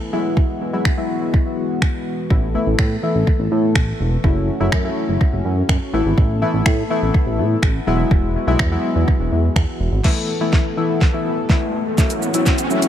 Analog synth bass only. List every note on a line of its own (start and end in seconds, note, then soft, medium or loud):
2.30 2.56 A1 loud
2.67 2.75 A1 medium
2.79 2.96 A2 loud
3.15 3.24 A1 medium
3.39 3.48 A1 loud
3.52 3.77 A2 loud
3.75 3.93 A1 medium
4.00 4.17 E1 loud
4.24 4.50 F#1 loud
4.60 4.69 F#1 medium
4.72 4.90 F#2 loud
5.09 5.17 F#1 medium
5.33 5.41 F#1 medium
5.45 5.62 F#2 loud
5.69 5.78 F#2 medium
5.93 6.02 A1 loud
6.05 6.14 G#1 medium
6.18 6.44 A1 loud
6.54 6.62 A1 medium
6.66 6.83 A2 loud
7.02 7.11 A1 medium
7.26 7.40 A1 medium
7.38 7.56 A2 loud
7.62 7.80 A1 medium
7.87 8.04 E1 loud
8.11 8.37 E1 loud
8.47 8.56 B1 medium
8.59 8.77 E2 loud
8.96 9.04 E2 medium
9.20 9.29 E1 medium
9.32 9.49 E2 loud
9.56 9.65 E2 loud
9.80 9.89 E1 loud
9.92 10.01 G#1 medium